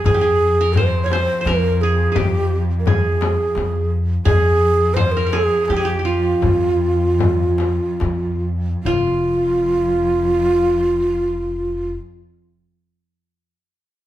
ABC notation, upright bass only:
X:1
M:3/4
L:1/8
Q:1/4=80
K:Fm
V:1 name="Upright bass" clef=bass
F,,4 F,,2 | F,,4 F,,2 | F,,4 F,,2 | F,,4 F,,2 |
F,,,6- | F,,,6 |]